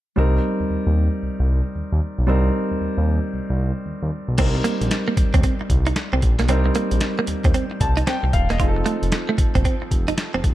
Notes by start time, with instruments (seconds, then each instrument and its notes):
0.16 analog synth bass C2, grand piano G3 C4 D#4 A#4
0.60 analog synth bass D#2
0.70 analog synth bass D#2
0.87 analog synth bass D#2
1.23 analog synth bass C2
1.40 analog synth bass C2
1.76 analog synth bass D#2
1.92 analog synth bass D#2
2.19 analog synth bass B1
2.27 analog synth bass C2, grand piano G3 C4 D#4 A#4
2.71 analog synth bass D#2
2.81 analog synth bass D#2
2.97 analog synth bass D#2
3.34 analog synth bass C2
3.50 analog synth bass C2
3.86 analog synth bass D#2
4.03 analog synth bass D#2
4.28 analog synth bass B1
4.38 analog synth bass C2, grand piano G3 C4 D#4 A#4, clean electric guitar C4, kick, closed hi-hat, crash
4.55 muted clean electric guitar stroke
4.64 clean electric guitar A#3, closed hi-hat
4.81 analog synth bass A#1, closed hi-hat
4.91 snare, closed hi-hat
5.08 clean electric guitar A#3
5.17 analog synth bass D#2, muted clean electric guitar stroke, kick, closed hi-hat
5.34 analog synth bass D#2, clean electric guitar C4, kick, closed hi-hat
5.43 clean electric guitar C4, kick, closed hi-hat
5.61 muted clean electric guitar stroke
5.70 analog synth bass C2, kick, closed hi-hat
5.86 clean electric guitar D#4, closed hi-hat
5.96 snare, closed hi-hat
6.13 analog synth bass C2, clean electric guitar C4
6.22 analog synth bass A#1, muted clean electric guitar stroke, kick, closed hi-hat
6.39 analog synth bass B1, clean electric guitar A#3, snare, closed hi-hat
6.48 analog synth bass C2, grand piano G3 C4 D#4 A#4, clean electric guitar C4, closed hi-hat
6.66 muted clean electric guitar stroke
6.75 clean electric guitar A#3, closed hi-hat
6.91 analog synth bass A#1, closed hi-hat
7.01 snare, closed hi-hat
7.19 clean electric guitar A#3
7.27 analog synth bass D#2, muted clean electric guitar stroke, closed hi-hat
7.44 analog synth bass D#2, clean electric guitar C4, kick, closed hi-hat
7.54 clean electric guitar C4, closed hi-hat
7.71 muted clean electric guitar stroke
7.80 analog synth bass C2, grand piano A5, kick, closed hi-hat
7.97 clean electric guitar D#4, closed hi-hat
8.07 clean electric guitar C4, grand piano G5, snare, closed hi-hat
8.23 analog synth bass C2, muted clean electric guitar stroke
8.33 analog synth bass D#1, grand piano F5, kick, closed hi-hat
8.49 analog synth bass E1, clean electric guitar A#3, grand piano D#5, snare, closed hi-hat
8.59 analog synth bass F1, grand piano F3 C4 D#4 G#4, clean electric guitar F4, kick, closed hi-hat
8.68 grand piano A4
8.76 muted clean electric guitar stroke
8.86 clean electric guitar A3, closed hi-hat
9.02 analog synth bass F1, closed hi-hat
9.12 snare, closed hi-hat
9.29 clean electric guitar A3
9.38 analog synth bass G1, muted clean electric guitar stroke, kick, closed hi-hat
9.55 analog synth bass G1, clean electric guitar C4, kick, closed hi-hat
9.65 clean electric guitar C4, kick, closed hi-hat
9.82 muted clean electric guitar stroke
9.91 analog synth bass F1, kick, closed hi-hat
10.08 clean electric guitar D#4, closed hi-hat
10.18 snare, closed hi-hat
10.34 analog synth bass F1, clean electric guitar C4
10.44 analog synth bass D#1, muted clean electric guitar stroke, kick, closed hi-hat